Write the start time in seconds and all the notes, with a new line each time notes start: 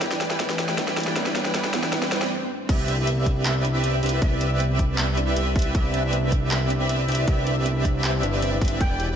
Already playing: A1 A3 C4 E4 G4 B4, riser
0.00 E3 G3 B3 D4 E4 B4 D5 G5, snare, closed hi-hat
0.11 D4, snare
0.21 E4, snare, closed hi-hat
0.30 E3 E4 G4 B4 D5 G5, snare
0.38 E3 G3 B3 D4 E4 B4 D5 G5, snare, closed hi-hat
0.42 B4
0.49 D4, snare
0.59 E4, snare, closed hi-hat
0.68 E3 E4 G4 B4 D5 G5, snare
0.76 E3 G3 B3 D4 E4 B4 D5 G5, snare, closed hi-hat
0.88 D4, snare
0.97 A1 E4, snare, closed hi-hat
1.00 closed hi-hat
1.03 E3 E4 G4 B4 D5 G5, snare, closed hi-hat
1.14 A1 E3 G3 B3 D4 E4 B4 D5 G5, snare, closed hi-hat
1.18 B4
1.26 D4, snare
1.33 E3 G3 B3 D4 E4 B4 D5 G5, snare, closed hi-hat
1.37 B4
1.45 D4, snare
1.52 E3 G3 B3 D4 E4 B4 D5 G5, snare, closed hi-hat
1.56 B4
1.64 D4, snare
1.72 E3 G3 B3 D4 E4 B4 D5 G5, snare, closed hi-hat
1.83 D4, snare
1.91 E1 E3 G3 B3 D4 E4 B4 D5 G5, snare, closed hi-hat, swell
1.95 B4
2.02 D4, snare
2.10 E3 G3 B3 D4 E4 B4 D5 G5, snare, closed hi-hat
2.14 B4
2.22 D4, snare
2.69 C2 C3 B3 C4 D4 E4 G4 B4 D5 E5, kick, closed hi-hat, crash
2.79 C4
2.88 D4, closed hi-hat
2.98 C4 E4 G4 B4 D5 E5
3.07 B3, closed hi-hat
3.17 C4
3.26 D4, kick, closed hi-hat
3.36 E4
3.45 B3 C4 G4 B4 D5 E5, clap, closed hi-hat
3.55 C4
3.65 D4, closed hi-hat
3.74 E4
3.84 B3 C4 G4 B4 D5 E5, closed hi-hat
3.93 C4
4.03 C2 C4 D4 G4 B4 D5 E5, closed hi-hat
4.06 closed hi-hat
4.09 E4, closed hi-hat
4.22 C2 B3 C4 D5 E5, kick, closed hi-hat
4.32 C4
4.41 D4, closed hi-hat
4.51 C4 E4 G4 B4 D5 E5
4.60 B3, closed hi-hat
4.70 C4
4.79 D4, kick, closed hi-hat
4.89 E4
4.98 B3 C4 G4 B4 D5 E5, clap, closed hi-hat
5.08 C4
5.17 D4, closed hi-hat
5.27 E4
5.36 C2 B3 C4 G4 B4 D5 E5, closed hi-hat
5.46 C4
5.56 C4 G4 B4 D5 E5, kick, closed hi-hat
5.59 closed hi-hat
5.62 E4, closed hi-hat
5.75 C2 B3 C4 G4 B4 D5 E5, kick, closed hi-hat
5.84 C4
5.94 D4, closed hi-hat
6.04 C4 E4 G4 B4 D5 E5
6.13 B3, closed hi-hat
6.23 C4
6.32 D4, kick, closed hi-hat
6.42 E4
6.51 B3 C4 G4 B4 D5 E5, clap, closed hi-hat
6.61 C4
6.70 D4, closed hi-hat
6.80 E4
6.89 B3 C4 G4 B4 D5 E5, closed hi-hat
6.99 C4
7.08 C2 C4 D4 G4 B4 D5 E5, closed hi-hat
7.12 closed hi-hat
7.15 E4, closed hi-hat
7.28 C2 B3 G4 B4 D5 E5, kick, closed hi-hat
7.37 C4
7.47 D4, closed hi-hat
7.56 C4 E4 G4 B4 D5 E5
7.66 B3, closed hi-hat
7.76 C4
7.85 D4, kick, closed hi-hat
7.95 E4
8.04 B3 C4 G4 B4 D5 E5, clap, closed hi-hat
8.14 C4
8.23 G1 E4, closed hi-hat
8.33 B4
8.42 C4 G4 B4 C5 D5 E5, closed hi-hat
8.52 E4
8.61 G1 C4 G4 B4 D5 E5, kick, closed hi-hat
8.65 closed hi-hat
8.68 E4, closed hi-hat
8.80 E1 E3 B3 E4 G4 B4 D5 G5, kick, closed hi-hat
8.90 D4
9.00 G4, closed hi-hat
9.09 E3 E4 G4 B4 D5 G5